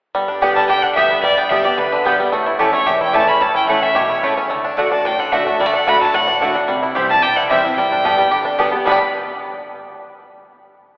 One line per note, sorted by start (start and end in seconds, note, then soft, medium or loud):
0.15 0.49 G1 medium
0.15 0.67 G2 medium
0.15 0.53 G3 medium
0.28 0.67 D4 medium
0.41 0.68 D3 medium
0.41 0.68 G3 medium
0.41 0.52 B3 medium
0.41 0.69 B3 medium
0.41 0.68 G4 medium
0.41 0.52 G4 medium
0.41 0.69 G4 medium
0.41 0.52 D5 loud
0.41 0.52 G5 medium
0.55 0.94 G3 medium
0.55 0.68 A5 loud
0.69 1.04 D2 medium
0.69 0.95 D3 medium
0.69 0.95 G4 medium
0.69 0.84 G5 loud
0.82 1.21 D4 medium
0.82 0.94 F#5 loud
0.95 1.22 D3 medium
0.95 1.23 G3 medium
0.95 1.06 B3 medium
0.95 1.23 B3 medium
0.95 1.35 G4 medium
0.95 1.06 G4 loud
0.95 1.23 G4 medium
0.95 1.07 D5 medium
0.95 1.21 E5 medium
0.95 1.07 G5 loud
1.10 1.36 B3 medium
1.23 1.58 G1 medium
1.23 1.76 G2 medium
1.23 1.62 G3 medium
1.23 1.39 D5 loud
1.37 1.76 B3 medium
1.37 1.51 G5 medium
1.50 1.64 D3 medium
1.50 1.65 G3 medium
1.50 1.61 B3 medium
1.50 1.65 B3 medium
1.50 1.77 D4 medium
1.50 1.61 G4 loud
1.50 1.64 G4 loud
1.50 1.61 D5 loud
1.50 1.65 E5 medium
1.50 1.61 G5 loud
1.64 1.79 B3 soft
1.64 1.78 G4 medium
1.64 2.03 G4 medium
1.64 1.79 D5 medium
1.78 2.13 D2 loud
1.78 2.03 D3 medium
1.78 2.17 D4 medium
1.78 2.19 B4 medium
1.92 2.30 D3 medium
2.04 2.19 D3 medium
2.04 2.19 G3 medium
2.04 2.15 B3 medium
2.04 2.33 B3 medium
2.04 2.19 B3 medium
2.04 2.15 G4 medium
2.04 2.18 G4 loud
2.04 2.15 D5 medium
2.04 2.15 G5 loud
2.19 2.32 G3 medium
2.19 2.33 B3 soft
2.19 2.32 G4 medium
2.32 2.67 A1 medium
2.32 2.85 A2 medium
2.32 2.73 A3 medium
2.46 2.85 E4 medium
2.59 2.73 E3 medium
2.59 2.69 A3 medium
2.59 2.74 A3 medium
2.59 2.74 C#4 medium
2.59 2.69 E4 medium
2.59 2.73 E4 medium
2.59 2.85 G4 medium
2.59 2.70 C#5 medium
2.59 2.70 A5 loud
2.73 3.16 A3 medium
2.73 2.88 C#4 soft
2.73 2.87 E4 medium
2.73 2.88 C#5 medium
2.87 3.22 E1 medium
2.87 3.39 E2 medium
2.87 3.12 G4 medium
2.87 3.01 E5 medium
3.01 3.39 E4 medium
3.01 3.16 G5 medium
3.13 3.40 E3 medium
3.13 3.24 A3 medium
3.13 3.41 A3 medium
3.13 3.41 C#4 medium
3.13 3.24 E4 medium
3.13 3.41 E4 medium
3.13 3.53 G4 medium
3.13 3.24 C#5 loud
3.13 3.29 A5 loud
3.13 3.24 A5 medium
3.27 3.54 C#4 medium
3.27 3.43 B5 medium
3.41 3.58 A1 medium
3.41 3.93 A2 medium
3.41 3.80 E4 medium
3.41 3.55 A5 loud
3.55 3.81 C#4 medium
3.55 3.68 G5 medium
3.67 3.92 A1 medium
3.67 3.95 E3 medium
3.67 4.23 A3 medium
3.67 3.78 A3 medium
3.67 3.95 A3 medium
3.67 3.96 C#4 medium
3.67 3.79 E4 medium
3.67 3.96 E4 medium
3.67 3.79 C#5 medium
3.67 3.85 F#5 medium
3.67 3.79 A5 loud
3.82 4.21 C#4 medium
3.82 3.98 E5 medium
3.95 4.20 B1 medium
3.95 4.22 B2 medium
3.95 4.34 G4 medium
3.95 4.38 C#5 medium
4.10 4.48 E4 medium
4.23 4.47 C#2 medium
4.23 4.50 C#3 medium
4.23 4.49 A3 medium
4.23 4.33 A3 medium
4.23 4.33 E4 medium
4.23 4.33 C#5 loud
4.23 4.34 A5 medium
4.38 4.51 C#4 medium
4.50 4.86 D2 medium
4.50 4.75 D3 medium
4.50 4.89 A3 medium
4.64 4.77 D4 medium
4.77 4.91 D3 medium
4.77 4.91 A3 medium
4.77 4.87 A3 medium
4.77 4.91 D4 medium
4.77 4.88 F#4 medium
4.77 4.90 F#4 loud
4.77 4.88 D5 medium
4.77 4.88 F#5 loud
4.91 5.04 D4 medium
4.91 5.05 D4 soft
4.91 5.04 F#4 medium
4.91 5.08 A5 medium
5.05 5.40 A1 medium
5.05 5.57 A2 medium
5.05 5.31 D4 medium
5.05 5.21 G5 medium
5.19 5.57 D3 medium
5.19 5.34 F#5 medium
5.32 5.46 D3 medium
5.32 5.42 A3 medium
5.32 5.46 A3 loud
5.32 5.71 D4 medium
5.32 5.46 D4 loud
5.32 5.42 F#4 loud
5.32 5.44 F#4 loud
5.32 5.42 D5 medium
5.32 5.62 E5 medium
5.32 5.42 F#5 loud
5.45 5.60 A3 medium
5.45 5.60 D4 soft
5.45 5.59 F#4 medium
5.59 5.94 D2 loud
5.59 5.85 D3 medium
5.59 5.66 G3 medium
5.59 5.74 D5 medium
5.66 5.87 A3 medium
5.74 5.86 D4 medium
5.74 5.90 F#5 medium
5.86 6.00 D3 medium
5.86 5.97 A3 medium
5.86 6.01 A3 medium
5.86 6.13 D4 medium
5.86 6.01 D4 medium
5.86 5.97 F#4 medium
5.86 5.99 F#4 loud
5.86 5.97 D5 medium
5.86 5.97 F#5 loud
5.86 6.01 B5 loud
6.01 6.39 A3 medium
6.01 6.14 D4 soft
6.01 6.14 F#4 medium
6.01 6.17 A5 loud
6.14 6.49 A1 medium
6.14 6.66 A2 medium
6.14 6.27 D4 medium
6.14 6.56 F#5 medium
6.28 6.40 D4 medium
6.41 6.55 D3 medium
6.41 6.51 A3 medium
6.41 6.56 A3 medium
6.41 6.54 D4 medium
6.41 6.56 D4 medium
6.41 6.51 F#4 medium
6.41 6.54 F#4 medium
6.41 6.51 D5 loud
6.41 6.52 F#5 loud
6.55 6.69 D4 medium
6.55 6.69 D4 soft
6.55 6.68 F#4 medium
6.68 6.86 C2 medium
6.68 7.21 C3 medium
6.68 7.09 G3 medium
6.83 7.21 E4 medium
6.95 7.20 C2 medium
6.95 7.09 E3 medium
6.95 7.10 G3 medium
6.95 7.05 C4 medium
6.95 7.10 C4 loud
6.95 7.05 E4 medium
6.95 7.09 E4 medium
6.95 7.22 G4 medium
6.95 7.06 C5 loud
6.95 7.06 G5 medium
7.09 7.78 G3 medium
7.09 7.24 C4 soft
7.09 7.23 E4 medium
7.09 7.24 A5 loud
7.23 7.47 B1 medium
7.23 7.75 G2 medium
7.23 7.50 G4 medium
7.23 7.38 G5 loud
7.36 7.75 E4 medium
7.36 7.49 F#5 loud
7.49 7.74 A1 medium
7.49 7.64 E3 medium
7.49 7.64 G3 medium
7.49 7.60 C4 medium
7.49 7.63 C4 medium
7.49 7.60 E4 medium
7.49 7.62 E4 loud
7.49 8.04 G4 medium
7.49 7.60 C5 medium
7.49 7.75 E5 medium
7.49 7.60 G5 medium
7.63 7.78 C4 medium
7.63 7.77 C4 medium
7.63 7.76 E4 medium
7.76 8.12 G1 medium
7.76 8.29 G2 medium
7.76 8.16 G3 medium
7.76 8.68 G5 loud
7.92 8.30 D4 medium
8.04 8.18 D3 medium
8.04 8.18 G3 medium
8.04 8.14 B3 medium
8.04 8.18 B3 medium
8.04 8.30 G4 medium
8.04 8.14 G4 medium
8.04 8.17 G4 medium
8.04 8.14 D5 medium
8.04 8.15 A5 medium
8.18 8.56 G3 medium
8.18 8.32 B3 soft
8.18 8.31 G4 medium
8.31 8.66 D2 medium
8.31 8.57 D3 medium
8.31 8.57 G4 medium
8.45 8.83 D4 medium
8.58 8.72 D3 medium
8.58 8.72 G3 medium
8.58 8.68 B3 medium
8.58 8.73 B3 loud
8.58 8.86 G4 medium
8.58 8.69 G4 medium
8.58 8.71 G4 loud
8.58 8.69 D5 medium
8.58 8.69 A5 loud
8.72 8.85 B3 medium
8.72 8.86 B3 soft
8.72 8.85 G4 medium
8.85 8.99 G1 medium
8.85 8.97 G2 medium
8.85 8.97 A2 medium
8.85 8.97 D3 medium
8.85 8.99 G3 medium
8.85 8.98 G3 medium
8.85 8.97 B3 medium
8.85 8.98 B3 loud
8.85 9.00 B3 medium
8.85 8.98 G4 medium
8.85 8.98 D5 medium
8.85 8.98 A5 medium
8.85 8.99 B5 medium
8.90 9.01 D4 medium
8.90 9.02 G4 medium